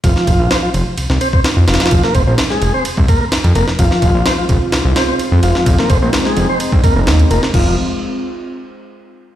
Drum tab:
CC |--------------------------------|--------------------------------|--------------------------------|--------------------------------|
RD |x---x---x---x---x---x---x---xxxx|x---x---x---x---x---x---x-x-x---|x---x---x---x---x---x---x---x---|x---x---x---x---x---x---x-x-x---|
SD |--o-----o---------o-----o---oooo|--o-----o-o-------------o-----o-|--o-----o-------o---o---------o-|--o-----o-o-------------o-----o-|
BD |o---o-----------------o---------|o---o-------------o-o-----------|o---o-------o-------------------|o---o-------------o-o-----------|

CC |x-------------------------------|
RD |--------------------------------|
SD |--------------------------------|
BD |o-------------------------------|